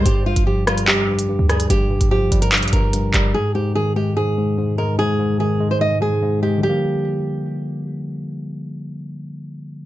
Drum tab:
HH |x-----x-----x-x-------x-----x-x-|x-----x-----x-x-xxxxx---x---x---|--------------------------------|--------------------------------|
CP |----------------x---------------|----------------x-----------x---|--------------------------------|--------------------------------|
SD |------------r---------------r---|--------------------------------|--------------------------------|--------------------------------|

HH |--------------------------------|--------------------------------|
CP |--------------------------------|--------------------------------|
SD |--------------------------------|--------------------------------|